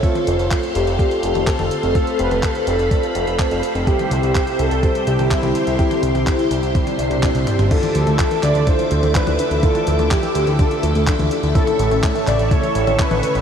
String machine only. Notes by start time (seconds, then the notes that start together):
Already playing: A4
0.03 C5 F5 C6
1.95 B5
3.87 G4 E5 C6
7.71 A4 E5 D6
11.55 C#5 C#6